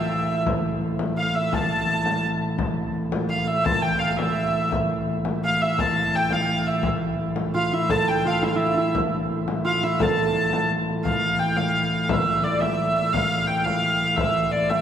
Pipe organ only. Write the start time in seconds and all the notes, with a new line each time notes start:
Already playing: A2 E3
2.59 A2 E3
6.84 A2 E3
11.04 A2 E3